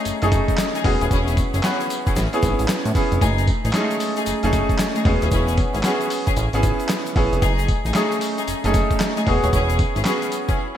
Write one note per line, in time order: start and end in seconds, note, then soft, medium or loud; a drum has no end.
0.00 0.22 A3 loud
0.00 0.22 C#4 medium
0.00 0.23 D#4 medium
0.00 0.10 G#4 loud
0.05 0.12 F#1 soft
0.05 closed hi-hat medium
0.05 tambourine medium
0.05 shaker medium
0.22 0.41 F#1 loud
0.22 0.77 A3 loud
0.22 0.77 C#4 loud
0.22 0.77 D#4 loud
0.22 0.78 G#4 loud
0.22 closed hi-hat medium
0.22 shaker soft
0.32 kick loud
0.32 closed hi-hat medium
0.32 tambourine medium
0.32 shaker medium
0.48 kick medium
0.48 closed hi-hat soft
0.48 shaker medium
0.58 snare loud
0.58 clap loud
0.58 closed hi-hat medium
0.58 tambourine loud
0.58 shaker medium
0.75 0.87 A3 medium
0.75 0.87 D#4 medium
0.75 0.87 G#4 medium
0.75 closed hi-hat medium
0.75 shaker soft
0.84 0.96 E1 loud
0.84 1.55 B3 loud
0.84 1.55 C#4 medium
0.84 1.55 F#4 medium
0.84 1.55 G#4 loud
0.84 kick loud
0.84 open hi-hat medium
1.01 1.08 D#1 loud
1.01 1.09 C#4 medium
1.01 1.09 E4 medium
1.01 1.10 G#4 medium
1.01 closed hi-hat medium
1.01 shaker soft
1.10 1.41 E1 loud
1.10 1.29 C#4 loud
1.10 1.29 E4 medium
1.10 1.29 G#4 loud
1.10 kick loud
1.10 closed hi-hat medium
1.10 tambourine medium
1.10 shaker medium
1.28 closed hi-hat medium
1.28 shaker medium
1.37 kick medium
1.37 closed hi-hat medium
1.37 tambourine medium
1.37 shaker medium
1.53 1.61 F#1 medium
1.53 1.62 C#4 medium
1.53 1.62 E4 medium
1.53 1.62 G#4 medium
1.53 closed hi-hat medium
1.53 shaker medium
1.63 2.16 B3 medium
1.63 1.81 C#4 medium
1.63 2.16 C#4 medium
1.63 1.81 E4 medium
1.63 2.16 F#4 medium
1.63 1.82 G#4 medium
1.63 2.16 B4 loud
1.63 snare loud
1.63 clap medium
1.63 closed hi-hat medium
1.63 tambourine medium
1.63 shaker medium
1.80 closed hi-hat soft
1.80 shaker soft
1.90 closed hi-hat medium
1.90 tambourine medium
1.90 shaker medium
2.06 2.18 C#4 medium
2.06 2.18 E4 medium
2.06 2.19 G#4 medium
2.06 kick loud
2.06 closed hi-hat medium
2.06 shaker soft
2.16 2.28 A1 loud
2.16 snare medium
2.16 closed hi-hat medium
2.16 tambourine medium
2.16 shaker medium
2.33 2.88 B3 loud
2.33 2.88 C#4 medium
2.33 2.88 E4 medium
2.33 2.88 G#4 loud
2.33 closed hi-hat medium
2.33 shaker soft
2.43 2.55 G#1 loud
2.43 kick loud
2.43 closed hi-hat medium
2.43 tambourine medium
2.43 shaker medium
2.59 2.66 A1 loud
2.59 closed hi-hat medium
2.59 shaker medium
2.68 snare loud
2.68 clap loud
2.68 closed hi-hat medium
2.68 tambourine loud
2.68 shaker medium
2.85 2.92 A2 loud
2.85 closed hi-hat medium
2.85 shaker medium
2.95 3.21 B3 loud
2.95 3.21 C#4 medium
2.95 3.22 E4 medium
2.95 3.22 G#4 loud
2.95 kick loud
2.95 open hi-hat medium
2.95 shaker medium
3.12 3.19 F1 medium
3.12 closed hi-hat medium
3.12 shaker soft
3.21 3.52 F#1 loud
3.21 3.39 A3 loud
3.21 3.39 D#4 medium
3.21 3.39 G#4 loud
3.21 kick loud
3.21 closed hi-hat medium
3.21 tambourine medium
3.21 shaker medium
3.38 closed hi-hat medium
3.38 shaker medium
3.47 kick loud
3.47 closed hi-hat medium
3.47 tambourine medium
3.64 3.71 A1 medium
3.64 3.72 A3 medium
3.64 3.73 D#4 medium
3.64 3.73 G#4 medium
3.64 closed hi-hat medium
3.64 shaker medium
3.73 3.82 G#3 medium
3.73 3.92 A3 medium
3.73 4.31 C#4 medium
3.73 3.92 D#4 medium
3.73 4.31 D#4 medium
3.73 3.92 G#4 medium
3.73 4.31 G#4 loud
3.73 snare loud
3.73 clap medium
3.73 closed hi-hat medium
3.73 tambourine medium
3.73 shaker medium
3.80 4.34 A3 medium
3.91 closed hi-hat medium
3.91 shaker soft
4.00 open hi-hat medium
4.00 tambourine medium
4.00 shaker medium
4.16 4.29 A3 medium
4.16 4.29 D#4 medium
4.16 4.29 G#4 medium
4.16 closed hi-hat medium
4.16 shaker medium
4.26 4.33 F#1 soft
4.26 closed hi-hat medium
4.26 tambourine medium
4.26 shaker medium
4.43 4.62 F#1 loud
4.43 4.98 A3 loud
4.43 4.98 C#4 medium
4.43 4.99 D#4 medium
4.43 4.99 G#4 loud
4.43 closed hi-hat medium
4.43 shaker soft
4.53 kick loud
4.53 closed hi-hat medium
4.53 tambourine medium
4.53 shaker medium
4.69 kick medium
4.69 closed hi-hat medium
4.69 shaker medium
4.79 snare loud
4.79 clap medium
4.79 closed hi-hat medium
4.79 tambourine loud
4.79 shaker medium
4.95 5.08 A3 medium
4.95 5.08 D#4 medium
4.95 5.08 G#4 medium
4.95 closed hi-hat medium
4.95 shaker soft
5.05 5.17 E1 loud
5.05 5.76 B3 loud
5.05 5.76 C#4 medium
5.05 5.76 F#4 medium
5.05 5.76 G#4 loud
5.05 kick loud
5.05 open hi-hat medium
5.22 5.29 D#1 loud
5.22 5.30 C#4 medium
5.22 5.30 E4 medium
5.22 5.31 G#4 medium
5.22 closed hi-hat medium
5.22 shaker soft
5.31 5.62 E1 loud
5.31 5.50 C#4 loud
5.31 5.50 E4 medium
5.31 5.50 G#4 loud
5.31 kick loud
5.31 closed hi-hat medium
5.31 tambourine medium
5.31 shaker medium
5.48 closed hi-hat medium
5.48 shaker medium
5.57 kick loud
5.57 closed hi-hat medium
5.57 tambourine medium
5.74 5.81 G#1 medium
5.74 5.82 C#4 medium
5.74 5.83 E4 medium
5.74 5.83 G#4 medium
5.74 closed hi-hat medium
5.74 shaker medium
5.83 6.37 B3 medium
5.83 6.02 C#4 medium
5.83 6.37 C#4 medium
5.83 6.02 E4 medium
5.83 6.37 F#4 medium
5.83 6.02 G#4 medium
5.83 6.38 G#4 loud
5.83 snare loud
5.83 clap medium
5.83 closed hi-hat medium
5.83 tambourine medium
5.83 shaker medium
6.01 closed hi-hat soft
6.01 shaker medium
6.10 open hi-hat medium
6.10 tambourine medium
6.10 shaker medium
6.27 6.39 C#4 medium
6.27 6.39 E4 medium
6.27 6.39 G#4 medium
6.27 kick loud
6.27 closed hi-hat medium
6.27 shaker soft
6.36 6.49 A1 loud
6.36 closed hi-hat medium
6.36 tambourine medium
6.36 shaker medium
6.53 6.72 G#1 loud
6.53 7.09 B3 loud
6.53 7.09 C#4 medium
6.53 7.09 E4 medium
6.53 7.09 G#4 loud
6.53 closed hi-hat medium
6.53 shaker soft
6.63 kick loud
6.63 closed hi-hat medium
6.63 tambourine medium
6.63 shaker medium
6.80 closed hi-hat medium
6.80 shaker medium
6.89 snare loud
6.89 clap loud
6.89 closed hi-hat medium
6.89 tambourine loud
6.89 shaker medium
7.06 closed hi-hat medium
7.06 shaker medium
7.16 7.28 A1 medium
7.16 7.42 B3 loud
7.16 7.42 C#4 medium
7.16 7.42 E4 medium
7.16 7.43 G#4 loud
7.16 kick loud
7.16 open hi-hat medium
7.33 7.39 F1 loud
7.33 closed hi-hat medium
7.33 shaker soft
7.42 7.73 F#1 loud
7.42 7.60 A3 loud
7.42 7.60 D#4 medium
7.42 7.60 G#4 loud
7.42 kick loud
7.42 closed hi-hat medium
7.42 tambourine medium
7.42 shaker medium
7.59 closed hi-hat medium
7.59 shaker medium
7.68 kick loud
7.68 closed hi-hat medium
7.68 tambourine medium
7.85 7.92 A1 medium
7.85 7.93 A3 medium
7.85 7.93 D#4 medium
7.85 7.94 G#4 medium
7.85 closed hi-hat medium
7.85 shaker medium
7.94 8.13 A3 medium
7.94 8.52 A3 medium
7.94 8.52 C#4 medium
7.94 8.13 D#4 medium
7.94 8.52 D#4 medium
7.94 8.13 G#4 medium
7.94 8.52 G#4 loud
7.94 snare loud
7.94 clap loud
7.94 closed hi-hat medium
7.94 tambourine medium
7.94 shaker medium
8.12 closed hi-hat medium
8.12 shaker medium
8.21 open hi-hat medium
8.21 tambourine medium
8.21 shaker medium
8.37 8.50 A3 medium
8.37 8.50 D#4 medium
8.37 8.50 G#4 medium
8.37 closed hi-hat medium
8.37 shaker medium
8.47 8.54 F#1 soft
8.47 closed hi-hat medium
8.47 tambourine medium
8.47 shaker medium
8.64 8.83 F#1 loud
8.64 9.20 A3 loud
8.64 9.20 C#4 medium
8.64 9.20 D#4 loud
8.64 9.20 G#4 loud
8.64 closed hi-hat medium
8.64 shaker soft
8.74 kick loud
8.74 closed hi-hat medium
8.74 tambourine medium
8.74 shaker medium
8.91 kick medium
8.91 closed hi-hat soft
8.91 shaker medium
9.00 snare loud
9.00 clap loud
9.00 closed hi-hat medium
9.00 tambourine loud
9.00 shaker medium
9.16 9.29 A3 medium
9.16 9.29 D#4 medium
9.16 9.29 G#4 medium
9.16 closed hi-hat medium
9.16 shaker soft
9.27 9.38 E1 loud
9.27 9.97 B3 loud
9.27 9.97 C#4 medium
9.27 9.97 F#4 medium
9.27 9.98 G#4 loud
9.27 kick loud
9.27 open hi-hat medium
9.43 9.50 D#1 loud
9.43 9.51 C#4 medium
9.43 9.52 E4 medium
9.43 9.52 G#4 medium
9.43 closed hi-hat medium
9.43 shaker soft
9.52 9.84 E1 loud
9.52 9.71 C#4 loud
9.52 9.71 E4 medium
9.52 9.71 G#4 loud
9.52 kick loud
9.52 closed hi-hat medium
9.52 tambourine medium
9.52 shaker medium
9.70 closed hi-hat medium
9.70 shaker medium
9.79 kick loud
9.79 closed hi-hat medium
9.79 tambourine medium
9.96 10.03 G#1 medium
9.96 10.04 C#4 medium
9.96 10.04 E4 medium
9.96 10.04 G#4 medium
9.96 closed hi-hat medium
9.96 shaker medium
10.05 10.58 B3 medium
10.05 10.23 C#4 medium
10.05 10.58 C#4 medium
10.05 10.23 E4 medium
10.05 10.59 F#4 medium
10.05 10.24 G#4 medium
10.05 10.59 G#4 loud
10.05 snare loud
10.05 clap loud
10.05 closed hi-hat medium
10.05 tambourine medium
10.05 shaker medium
10.22 closed hi-hat medium
10.22 shaker soft
10.32 closed hi-hat medium
10.32 tambourine medium
10.32 shaker medium
10.48 10.58 C#4 medium
10.48 10.58 E4 medium
10.48 10.58 G#4 medium
10.48 kick loud
10.48 closed hi-hat medium
10.48 shaker soft